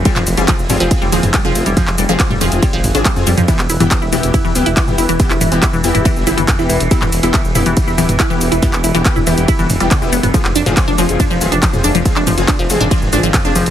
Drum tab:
RD |x---x---x---x---|x---x---x---x---|x---x---x---x---|x---x---x---x---|
HH |x-oxx-oxx-oxx-ox|x-oxx-oxx-oxx-ox|x-oxx-oxx-oxx-ox|x-oxx-oxx-oxx-ox|
SH |xxxxxxxxxxxxxxxx|xxxxxxxxxxxxxxxx|xxxxxxxxxxxxxxxx|xxxxxxxxxxxxxxxx|
CP |-x--x-------x---|-x--x-------x---|-x--x-------x---|-x--x-------x---|
T2 |-o----o----o----|o----o----o----o|---o----o----o--|--o----o----o---|
BD |o---o---o---o---|o---o---o---o---|o---o---o---o---|o---o---o---o---|

RD |x---x---x---x---|x---x---x---x---|x---x---x---x---|x---x---x---x---|
HH |x-oxx-oxx-oxx-ox|x-oxx-oxx-oxx-ox|x-oxx-oxx-oxx-ox|x-oxx-oxx-oxx-ox|
SH |xxxxxxxxxxxxxxxx|xxxxxxxxxxxxxxxx|xxxxxxxxxxxxxxxx|xxxxxxxxxxxxxxxx|
CP |-x--x-------x---|-x--x-------x---|-x--x-------x---|-x--x-------x---|
T2 |-o----o----o----|o----o----o----o|---o----o----o--|--o----o----o---|
BD |o---o---o---o---|o---o---o---o---|o---o---o---o---|o---o---o---o---|